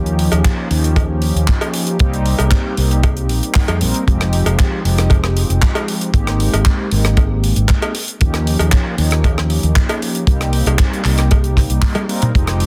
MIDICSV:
0, 0, Header, 1, 4, 480
1, 0, Start_track
1, 0, Tempo, 517241
1, 1857, Time_signature, 4, 2, 24, 8
1, 11748, End_track
2, 0, Start_track
2, 0, Title_t, "Analog polysynth"
2, 0, Program_c, 0, 90
2, 0, Note_on_c, 0, 53, 96
2, 0, Note_on_c, 0, 58, 81
2, 0, Note_on_c, 0, 61, 85
2, 0, Note_on_c, 0, 63, 86
2, 0, Note_on_c, 0, 67, 101
2, 623, Note_off_c, 0, 53, 0
2, 625, Note_off_c, 0, 58, 0
2, 627, Note_off_c, 0, 61, 0
2, 630, Note_off_c, 0, 63, 0
2, 632, Note_off_c, 0, 67, 0
2, 646, Note_on_c, 0, 53, 69
2, 650, Note_on_c, 0, 58, 59
2, 654, Note_on_c, 0, 61, 65
2, 659, Note_on_c, 0, 63, 61
2, 665, Note_on_c, 0, 67, 76
2, 1823, Note_off_c, 0, 53, 0
2, 1825, Note_off_c, 0, 58, 0
2, 1827, Note_off_c, 0, 61, 0
2, 1830, Note_off_c, 0, 63, 0
2, 1833, Note_off_c, 0, 67, 0
2, 1845, Note_on_c, 0, 55, 93
2, 1850, Note_on_c, 0, 58, 85
2, 1855, Note_on_c, 0, 60, 84
2, 1859, Note_on_c, 0, 63, 90
2, 1864, Note_on_c, 0, 67, 97
2, 2543, Note_off_c, 0, 55, 0
2, 2545, Note_off_c, 0, 58, 0
2, 2548, Note_off_c, 0, 60, 0
2, 2549, Note_off_c, 0, 63, 0
2, 2552, Note_off_c, 0, 67, 0
2, 2567, Note_on_c, 0, 55, 65
2, 2572, Note_on_c, 0, 58, 64
2, 2578, Note_on_c, 0, 60, 62
2, 2581, Note_on_c, 0, 63, 66
2, 2585, Note_on_c, 0, 67, 76
2, 3508, Note_off_c, 0, 55, 0
2, 3511, Note_off_c, 0, 58, 0
2, 3514, Note_off_c, 0, 60, 0
2, 3515, Note_off_c, 0, 63, 0
2, 3517, Note_off_c, 0, 67, 0
2, 3531, Note_on_c, 0, 55, 76
2, 3533, Note_on_c, 0, 58, 70
2, 3536, Note_on_c, 0, 60, 70
2, 3540, Note_on_c, 0, 63, 69
2, 3542, Note_on_c, 0, 70, 83
2, 3746, Note_off_c, 0, 55, 0
2, 3747, Note_off_c, 0, 58, 0
2, 3748, Note_off_c, 0, 60, 0
2, 3750, Note_off_c, 0, 63, 0
2, 3751, Note_off_c, 0, 70, 0
2, 3767, Note_on_c, 0, 53, 89
2, 3770, Note_on_c, 0, 56, 85
2, 3776, Note_on_c, 0, 60, 89
2, 3781, Note_on_c, 0, 63, 85
2, 3786, Note_on_c, 0, 67, 103
2, 4463, Note_off_c, 0, 53, 0
2, 4465, Note_off_c, 0, 56, 0
2, 4468, Note_off_c, 0, 60, 0
2, 4471, Note_off_c, 0, 63, 0
2, 4473, Note_off_c, 0, 67, 0
2, 4488, Note_on_c, 0, 53, 71
2, 4494, Note_on_c, 0, 56, 61
2, 4499, Note_on_c, 0, 60, 60
2, 4503, Note_on_c, 0, 63, 64
2, 4507, Note_on_c, 0, 67, 74
2, 5664, Note_off_c, 0, 53, 0
2, 5667, Note_off_c, 0, 56, 0
2, 5670, Note_off_c, 0, 60, 0
2, 5671, Note_off_c, 0, 63, 0
2, 5674, Note_off_c, 0, 67, 0
2, 5689, Note_on_c, 0, 56, 95
2, 5694, Note_on_c, 0, 58, 85
2, 5699, Note_on_c, 0, 60, 84
2, 5702, Note_on_c, 0, 63, 82
2, 5707, Note_on_c, 0, 67, 104
2, 6385, Note_off_c, 0, 56, 0
2, 6387, Note_off_c, 0, 58, 0
2, 6389, Note_off_c, 0, 60, 0
2, 6391, Note_off_c, 0, 63, 0
2, 6394, Note_off_c, 0, 67, 0
2, 6410, Note_on_c, 0, 56, 67
2, 6414, Note_on_c, 0, 58, 66
2, 6419, Note_on_c, 0, 60, 65
2, 6423, Note_on_c, 0, 63, 61
2, 6428, Note_on_c, 0, 67, 71
2, 7359, Note_off_c, 0, 56, 0
2, 7361, Note_off_c, 0, 58, 0
2, 7364, Note_off_c, 0, 60, 0
2, 7366, Note_off_c, 0, 63, 0
2, 7368, Note_off_c, 0, 67, 0
2, 7608, Note_on_c, 0, 53, 90
2, 7613, Note_on_c, 0, 58, 82
2, 7617, Note_on_c, 0, 61, 88
2, 7623, Note_on_c, 0, 63, 83
2, 7628, Note_on_c, 0, 67, 107
2, 8304, Note_off_c, 0, 53, 0
2, 8307, Note_off_c, 0, 58, 0
2, 8309, Note_off_c, 0, 61, 0
2, 8311, Note_off_c, 0, 63, 0
2, 8314, Note_off_c, 0, 67, 0
2, 8328, Note_on_c, 0, 53, 68
2, 8333, Note_on_c, 0, 58, 59
2, 8338, Note_on_c, 0, 61, 61
2, 8343, Note_on_c, 0, 63, 64
2, 8348, Note_on_c, 0, 67, 73
2, 9504, Note_off_c, 0, 53, 0
2, 9507, Note_off_c, 0, 58, 0
2, 9509, Note_off_c, 0, 61, 0
2, 9512, Note_off_c, 0, 63, 0
2, 9514, Note_off_c, 0, 67, 0
2, 9522, Note_on_c, 0, 55, 97
2, 9527, Note_on_c, 0, 58, 87
2, 9533, Note_on_c, 0, 60, 87
2, 9538, Note_on_c, 0, 63, 87
2, 9543, Note_on_c, 0, 67, 110
2, 10221, Note_off_c, 0, 55, 0
2, 10224, Note_off_c, 0, 58, 0
2, 10227, Note_off_c, 0, 60, 0
2, 10229, Note_off_c, 0, 63, 0
2, 10231, Note_off_c, 0, 67, 0
2, 10247, Note_on_c, 0, 55, 72
2, 10249, Note_on_c, 0, 58, 64
2, 10256, Note_on_c, 0, 60, 61
2, 10259, Note_on_c, 0, 63, 65
2, 10265, Note_on_c, 0, 67, 76
2, 11188, Note_off_c, 0, 55, 0
2, 11190, Note_off_c, 0, 58, 0
2, 11193, Note_off_c, 0, 60, 0
2, 11194, Note_off_c, 0, 63, 0
2, 11197, Note_off_c, 0, 67, 0
2, 11210, Note_on_c, 0, 55, 77
2, 11212, Note_on_c, 0, 58, 72
2, 11216, Note_on_c, 0, 60, 71
2, 11218, Note_on_c, 0, 63, 71
2, 11218, Note_on_c, 0, 70, 84
2, 11425, Note_off_c, 0, 55, 0
2, 11426, Note_off_c, 0, 58, 0
2, 11428, Note_off_c, 0, 60, 0
2, 11429, Note_off_c, 0, 63, 0
2, 11429, Note_off_c, 0, 70, 0
2, 11446, Note_on_c, 0, 53, 95
2, 11450, Note_on_c, 0, 56, 87
2, 11456, Note_on_c, 0, 60, 88
2, 11461, Note_on_c, 0, 63, 87
2, 11465, Note_on_c, 0, 67, 101
2, 11748, Note_off_c, 0, 53, 0
2, 11748, Note_off_c, 0, 56, 0
2, 11748, Note_off_c, 0, 60, 0
2, 11748, Note_off_c, 0, 63, 0
2, 11748, Note_off_c, 0, 67, 0
2, 11748, End_track
3, 0, Start_track
3, 0, Title_t, "Fingered electric bass"
3, 0, Program_c, 1, 33
3, 0, Note_on_c, 1, 39, 94
3, 253, Note_off_c, 1, 39, 0
3, 298, Note_on_c, 1, 39, 85
3, 389, Note_off_c, 1, 39, 0
3, 656, Note_on_c, 1, 39, 76
3, 1213, Note_off_c, 1, 39, 0
3, 1258, Note_on_c, 1, 39, 75
3, 1349, Note_off_c, 1, 39, 0
3, 1857, Note_on_c, 1, 36, 90
3, 2174, Note_off_c, 1, 36, 0
3, 2221, Note_on_c, 1, 36, 84
3, 2310, Note_off_c, 1, 36, 0
3, 2576, Note_on_c, 1, 36, 69
3, 3059, Note_off_c, 1, 36, 0
3, 3059, Note_on_c, 1, 34, 93
3, 3151, Note_off_c, 1, 34, 0
3, 3421, Note_on_c, 1, 41, 85
3, 3539, Note_on_c, 1, 34, 75
3, 3553, Note_off_c, 1, 41, 0
3, 3631, Note_off_c, 1, 34, 0
3, 3783, Note_on_c, 1, 29, 90
3, 4096, Note_off_c, 1, 29, 0
3, 4137, Note_on_c, 1, 29, 86
3, 4229, Note_off_c, 1, 29, 0
3, 4498, Note_on_c, 1, 29, 72
3, 5054, Note_off_c, 1, 29, 0
3, 5100, Note_on_c, 1, 29, 73
3, 5190, Note_off_c, 1, 29, 0
3, 5696, Note_on_c, 1, 32, 96
3, 6013, Note_off_c, 1, 32, 0
3, 6063, Note_on_c, 1, 32, 87
3, 6152, Note_off_c, 1, 32, 0
3, 6421, Note_on_c, 1, 32, 74
3, 6975, Note_off_c, 1, 32, 0
3, 7019, Note_on_c, 1, 32, 77
3, 7110, Note_off_c, 1, 32, 0
3, 7623, Note_on_c, 1, 39, 89
3, 7937, Note_off_c, 1, 39, 0
3, 7978, Note_on_c, 1, 39, 87
3, 8069, Note_off_c, 1, 39, 0
3, 8335, Note_on_c, 1, 39, 78
3, 8892, Note_off_c, 1, 39, 0
3, 8939, Note_on_c, 1, 39, 81
3, 9029, Note_off_c, 1, 39, 0
3, 9532, Note_on_c, 1, 36, 93
3, 9851, Note_off_c, 1, 36, 0
3, 9895, Note_on_c, 1, 36, 90
3, 9988, Note_off_c, 1, 36, 0
3, 10254, Note_on_c, 1, 36, 74
3, 10812, Note_off_c, 1, 36, 0
3, 10857, Note_on_c, 1, 36, 78
3, 10949, Note_off_c, 1, 36, 0
3, 11462, Note_on_c, 1, 29, 92
3, 11748, Note_off_c, 1, 29, 0
3, 11748, End_track
4, 0, Start_track
4, 0, Title_t, "Drums"
4, 57, Note_on_c, 9, 42, 50
4, 150, Note_off_c, 9, 42, 0
4, 175, Note_on_c, 9, 46, 100
4, 268, Note_off_c, 9, 46, 0
4, 295, Note_on_c, 9, 56, 81
4, 302, Note_on_c, 9, 42, 61
4, 387, Note_off_c, 9, 56, 0
4, 395, Note_off_c, 9, 42, 0
4, 416, Note_on_c, 9, 36, 115
4, 418, Note_on_c, 9, 39, 107
4, 420, Note_on_c, 9, 42, 79
4, 509, Note_off_c, 9, 36, 0
4, 511, Note_off_c, 9, 39, 0
4, 513, Note_off_c, 9, 42, 0
4, 657, Note_on_c, 9, 46, 91
4, 750, Note_off_c, 9, 46, 0
4, 782, Note_on_c, 9, 42, 55
4, 874, Note_off_c, 9, 42, 0
4, 893, Note_on_c, 9, 36, 107
4, 896, Note_on_c, 9, 56, 59
4, 898, Note_on_c, 9, 42, 71
4, 986, Note_off_c, 9, 36, 0
4, 989, Note_off_c, 9, 56, 0
4, 991, Note_off_c, 9, 42, 0
4, 1130, Note_on_c, 9, 46, 86
4, 1222, Note_off_c, 9, 46, 0
4, 1266, Note_on_c, 9, 42, 58
4, 1359, Note_off_c, 9, 42, 0
4, 1371, Note_on_c, 9, 39, 112
4, 1371, Note_on_c, 9, 42, 76
4, 1379, Note_on_c, 9, 36, 104
4, 1464, Note_off_c, 9, 39, 0
4, 1464, Note_off_c, 9, 42, 0
4, 1472, Note_off_c, 9, 36, 0
4, 1496, Note_on_c, 9, 56, 82
4, 1502, Note_on_c, 9, 42, 52
4, 1589, Note_off_c, 9, 56, 0
4, 1595, Note_off_c, 9, 42, 0
4, 1611, Note_on_c, 9, 46, 113
4, 1703, Note_off_c, 9, 46, 0
4, 1733, Note_on_c, 9, 42, 64
4, 1826, Note_off_c, 9, 42, 0
4, 1850, Note_on_c, 9, 42, 74
4, 1857, Note_on_c, 9, 36, 121
4, 1943, Note_off_c, 9, 42, 0
4, 1950, Note_off_c, 9, 36, 0
4, 1981, Note_on_c, 9, 42, 51
4, 2074, Note_off_c, 9, 42, 0
4, 2093, Note_on_c, 9, 46, 89
4, 2186, Note_off_c, 9, 46, 0
4, 2214, Note_on_c, 9, 56, 89
4, 2223, Note_on_c, 9, 42, 61
4, 2307, Note_off_c, 9, 56, 0
4, 2316, Note_off_c, 9, 42, 0
4, 2329, Note_on_c, 9, 42, 82
4, 2332, Note_on_c, 9, 39, 111
4, 2334, Note_on_c, 9, 36, 118
4, 2422, Note_off_c, 9, 42, 0
4, 2425, Note_off_c, 9, 39, 0
4, 2427, Note_off_c, 9, 36, 0
4, 2574, Note_on_c, 9, 46, 97
4, 2667, Note_off_c, 9, 46, 0
4, 2701, Note_on_c, 9, 42, 57
4, 2794, Note_off_c, 9, 42, 0
4, 2816, Note_on_c, 9, 42, 79
4, 2817, Note_on_c, 9, 36, 100
4, 2819, Note_on_c, 9, 56, 64
4, 2908, Note_off_c, 9, 42, 0
4, 2910, Note_off_c, 9, 36, 0
4, 2912, Note_off_c, 9, 56, 0
4, 2938, Note_on_c, 9, 42, 49
4, 3031, Note_off_c, 9, 42, 0
4, 3057, Note_on_c, 9, 46, 91
4, 3150, Note_off_c, 9, 46, 0
4, 3183, Note_on_c, 9, 42, 62
4, 3276, Note_off_c, 9, 42, 0
4, 3288, Note_on_c, 9, 39, 111
4, 3301, Note_on_c, 9, 36, 106
4, 3303, Note_on_c, 9, 46, 63
4, 3381, Note_off_c, 9, 39, 0
4, 3393, Note_off_c, 9, 36, 0
4, 3396, Note_off_c, 9, 46, 0
4, 3415, Note_on_c, 9, 42, 47
4, 3417, Note_on_c, 9, 56, 82
4, 3508, Note_off_c, 9, 42, 0
4, 3510, Note_off_c, 9, 56, 0
4, 3535, Note_on_c, 9, 46, 111
4, 3628, Note_off_c, 9, 46, 0
4, 3659, Note_on_c, 9, 42, 61
4, 3751, Note_off_c, 9, 42, 0
4, 3783, Note_on_c, 9, 36, 112
4, 3787, Note_on_c, 9, 42, 82
4, 3876, Note_off_c, 9, 36, 0
4, 3880, Note_off_c, 9, 42, 0
4, 3903, Note_on_c, 9, 42, 45
4, 3906, Note_on_c, 9, 37, 73
4, 3996, Note_off_c, 9, 42, 0
4, 3999, Note_off_c, 9, 37, 0
4, 4017, Note_on_c, 9, 46, 101
4, 4109, Note_off_c, 9, 46, 0
4, 4140, Note_on_c, 9, 56, 89
4, 4141, Note_on_c, 9, 42, 61
4, 4233, Note_off_c, 9, 56, 0
4, 4234, Note_off_c, 9, 42, 0
4, 4259, Note_on_c, 9, 42, 85
4, 4262, Note_on_c, 9, 39, 98
4, 4266, Note_on_c, 9, 36, 110
4, 4352, Note_off_c, 9, 42, 0
4, 4354, Note_off_c, 9, 39, 0
4, 4359, Note_off_c, 9, 36, 0
4, 4504, Note_on_c, 9, 46, 100
4, 4596, Note_off_c, 9, 46, 0
4, 4623, Note_on_c, 9, 42, 64
4, 4626, Note_on_c, 9, 37, 70
4, 4716, Note_off_c, 9, 42, 0
4, 4719, Note_off_c, 9, 37, 0
4, 4732, Note_on_c, 9, 56, 66
4, 4739, Note_on_c, 9, 36, 104
4, 4741, Note_on_c, 9, 42, 81
4, 4824, Note_off_c, 9, 56, 0
4, 4831, Note_off_c, 9, 36, 0
4, 4834, Note_off_c, 9, 42, 0
4, 4859, Note_on_c, 9, 37, 73
4, 4952, Note_off_c, 9, 37, 0
4, 4980, Note_on_c, 9, 46, 99
4, 5072, Note_off_c, 9, 46, 0
4, 5105, Note_on_c, 9, 42, 55
4, 5198, Note_off_c, 9, 42, 0
4, 5217, Note_on_c, 9, 39, 94
4, 5221, Note_on_c, 9, 36, 103
4, 5222, Note_on_c, 9, 42, 74
4, 5310, Note_off_c, 9, 39, 0
4, 5314, Note_off_c, 9, 36, 0
4, 5315, Note_off_c, 9, 42, 0
4, 5338, Note_on_c, 9, 56, 81
4, 5345, Note_on_c, 9, 42, 42
4, 5431, Note_off_c, 9, 56, 0
4, 5438, Note_off_c, 9, 42, 0
4, 5460, Note_on_c, 9, 46, 95
4, 5552, Note_off_c, 9, 46, 0
4, 5580, Note_on_c, 9, 42, 54
4, 5673, Note_off_c, 9, 42, 0
4, 5695, Note_on_c, 9, 36, 101
4, 5702, Note_on_c, 9, 42, 74
4, 5788, Note_off_c, 9, 36, 0
4, 5795, Note_off_c, 9, 42, 0
4, 5820, Note_on_c, 9, 42, 44
4, 5822, Note_on_c, 9, 37, 78
4, 5913, Note_off_c, 9, 42, 0
4, 5914, Note_off_c, 9, 37, 0
4, 5939, Note_on_c, 9, 46, 101
4, 6032, Note_off_c, 9, 46, 0
4, 6065, Note_on_c, 9, 56, 86
4, 6068, Note_on_c, 9, 42, 65
4, 6158, Note_off_c, 9, 56, 0
4, 6160, Note_off_c, 9, 42, 0
4, 6175, Note_on_c, 9, 39, 109
4, 6175, Note_on_c, 9, 42, 74
4, 6181, Note_on_c, 9, 36, 99
4, 6267, Note_off_c, 9, 39, 0
4, 6268, Note_off_c, 9, 42, 0
4, 6274, Note_off_c, 9, 36, 0
4, 6417, Note_on_c, 9, 46, 101
4, 6510, Note_off_c, 9, 46, 0
4, 6540, Note_on_c, 9, 37, 64
4, 6541, Note_on_c, 9, 42, 57
4, 6633, Note_off_c, 9, 37, 0
4, 6634, Note_off_c, 9, 42, 0
4, 6653, Note_on_c, 9, 42, 80
4, 6656, Note_on_c, 9, 36, 95
4, 6658, Note_on_c, 9, 56, 52
4, 6746, Note_off_c, 9, 42, 0
4, 6748, Note_off_c, 9, 36, 0
4, 6751, Note_off_c, 9, 56, 0
4, 6901, Note_on_c, 9, 46, 83
4, 6994, Note_off_c, 9, 46, 0
4, 7017, Note_on_c, 9, 42, 61
4, 7110, Note_off_c, 9, 42, 0
4, 7133, Note_on_c, 9, 42, 78
4, 7134, Note_on_c, 9, 39, 92
4, 7144, Note_on_c, 9, 36, 94
4, 7225, Note_off_c, 9, 42, 0
4, 7227, Note_off_c, 9, 39, 0
4, 7237, Note_off_c, 9, 36, 0
4, 7258, Note_on_c, 9, 42, 43
4, 7261, Note_on_c, 9, 56, 86
4, 7351, Note_off_c, 9, 42, 0
4, 7353, Note_off_c, 9, 56, 0
4, 7375, Note_on_c, 9, 46, 107
4, 7467, Note_off_c, 9, 46, 0
4, 7498, Note_on_c, 9, 42, 59
4, 7591, Note_off_c, 9, 42, 0
4, 7616, Note_on_c, 9, 42, 89
4, 7622, Note_on_c, 9, 36, 104
4, 7709, Note_off_c, 9, 42, 0
4, 7714, Note_off_c, 9, 36, 0
4, 7737, Note_on_c, 9, 42, 49
4, 7738, Note_on_c, 9, 37, 67
4, 7830, Note_off_c, 9, 42, 0
4, 7831, Note_off_c, 9, 37, 0
4, 7861, Note_on_c, 9, 46, 92
4, 7954, Note_off_c, 9, 46, 0
4, 7976, Note_on_c, 9, 56, 82
4, 7985, Note_on_c, 9, 42, 62
4, 8068, Note_off_c, 9, 56, 0
4, 8078, Note_off_c, 9, 42, 0
4, 8091, Note_on_c, 9, 39, 105
4, 8094, Note_on_c, 9, 42, 85
4, 8101, Note_on_c, 9, 36, 103
4, 8184, Note_off_c, 9, 39, 0
4, 8186, Note_off_c, 9, 42, 0
4, 8194, Note_off_c, 9, 36, 0
4, 8336, Note_on_c, 9, 46, 92
4, 8429, Note_off_c, 9, 46, 0
4, 8452, Note_on_c, 9, 42, 58
4, 8466, Note_on_c, 9, 37, 64
4, 8545, Note_off_c, 9, 42, 0
4, 8558, Note_off_c, 9, 37, 0
4, 8577, Note_on_c, 9, 36, 102
4, 8580, Note_on_c, 9, 42, 88
4, 8586, Note_on_c, 9, 56, 63
4, 8670, Note_off_c, 9, 36, 0
4, 8672, Note_off_c, 9, 42, 0
4, 8678, Note_off_c, 9, 56, 0
4, 8704, Note_on_c, 9, 37, 72
4, 8797, Note_off_c, 9, 37, 0
4, 8816, Note_on_c, 9, 46, 86
4, 8909, Note_off_c, 9, 46, 0
4, 8940, Note_on_c, 9, 42, 59
4, 9032, Note_off_c, 9, 42, 0
4, 9054, Note_on_c, 9, 42, 83
4, 9057, Note_on_c, 9, 39, 101
4, 9060, Note_on_c, 9, 36, 112
4, 9147, Note_off_c, 9, 42, 0
4, 9150, Note_off_c, 9, 39, 0
4, 9152, Note_off_c, 9, 36, 0
4, 9180, Note_on_c, 9, 42, 51
4, 9181, Note_on_c, 9, 56, 89
4, 9273, Note_off_c, 9, 42, 0
4, 9274, Note_off_c, 9, 56, 0
4, 9301, Note_on_c, 9, 46, 90
4, 9394, Note_off_c, 9, 46, 0
4, 9419, Note_on_c, 9, 42, 63
4, 9511, Note_off_c, 9, 42, 0
4, 9532, Note_on_c, 9, 36, 117
4, 9542, Note_on_c, 9, 42, 90
4, 9624, Note_off_c, 9, 36, 0
4, 9634, Note_off_c, 9, 42, 0
4, 9658, Note_on_c, 9, 42, 47
4, 9659, Note_on_c, 9, 37, 64
4, 9751, Note_off_c, 9, 42, 0
4, 9752, Note_off_c, 9, 37, 0
4, 9771, Note_on_c, 9, 46, 92
4, 9864, Note_off_c, 9, 46, 0
4, 9896, Note_on_c, 9, 42, 62
4, 9903, Note_on_c, 9, 56, 76
4, 9988, Note_off_c, 9, 42, 0
4, 9995, Note_off_c, 9, 56, 0
4, 10008, Note_on_c, 9, 42, 93
4, 10010, Note_on_c, 9, 39, 112
4, 10017, Note_on_c, 9, 36, 106
4, 10100, Note_off_c, 9, 42, 0
4, 10103, Note_off_c, 9, 39, 0
4, 10110, Note_off_c, 9, 36, 0
4, 10148, Note_on_c, 9, 42, 51
4, 10240, Note_off_c, 9, 42, 0
4, 10248, Note_on_c, 9, 39, 37
4, 10261, Note_on_c, 9, 46, 89
4, 10341, Note_off_c, 9, 39, 0
4, 10354, Note_off_c, 9, 46, 0
4, 10372, Note_on_c, 9, 42, 69
4, 10381, Note_on_c, 9, 37, 57
4, 10465, Note_off_c, 9, 42, 0
4, 10474, Note_off_c, 9, 37, 0
4, 10494, Note_on_c, 9, 42, 79
4, 10499, Note_on_c, 9, 56, 58
4, 10503, Note_on_c, 9, 36, 95
4, 10587, Note_off_c, 9, 42, 0
4, 10592, Note_off_c, 9, 56, 0
4, 10596, Note_off_c, 9, 36, 0
4, 10615, Note_on_c, 9, 42, 49
4, 10708, Note_off_c, 9, 42, 0
4, 10736, Note_on_c, 9, 36, 60
4, 10740, Note_on_c, 9, 37, 48
4, 10743, Note_on_c, 9, 46, 85
4, 10828, Note_off_c, 9, 36, 0
4, 10833, Note_off_c, 9, 37, 0
4, 10836, Note_off_c, 9, 46, 0
4, 10856, Note_on_c, 9, 42, 66
4, 10949, Note_off_c, 9, 42, 0
4, 10970, Note_on_c, 9, 39, 110
4, 10971, Note_on_c, 9, 36, 112
4, 10973, Note_on_c, 9, 46, 73
4, 10973, Note_on_c, 9, 48, 54
4, 11063, Note_off_c, 9, 39, 0
4, 11064, Note_off_c, 9, 36, 0
4, 11065, Note_off_c, 9, 48, 0
4, 11066, Note_off_c, 9, 46, 0
4, 11089, Note_on_c, 9, 56, 79
4, 11094, Note_on_c, 9, 48, 62
4, 11098, Note_on_c, 9, 42, 47
4, 11182, Note_off_c, 9, 56, 0
4, 11186, Note_off_c, 9, 48, 0
4, 11190, Note_off_c, 9, 42, 0
4, 11223, Note_on_c, 9, 46, 99
4, 11316, Note_off_c, 9, 46, 0
4, 11338, Note_on_c, 9, 42, 66
4, 11346, Note_on_c, 9, 45, 84
4, 11431, Note_off_c, 9, 42, 0
4, 11438, Note_off_c, 9, 45, 0
4, 11461, Note_on_c, 9, 36, 102
4, 11466, Note_on_c, 9, 42, 79
4, 11554, Note_off_c, 9, 36, 0
4, 11558, Note_off_c, 9, 42, 0
4, 11575, Note_on_c, 9, 42, 57
4, 11577, Note_on_c, 9, 37, 75
4, 11667, Note_off_c, 9, 42, 0
4, 11670, Note_off_c, 9, 37, 0
4, 11695, Note_on_c, 9, 46, 97
4, 11748, Note_off_c, 9, 46, 0
4, 11748, End_track
0, 0, End_of_file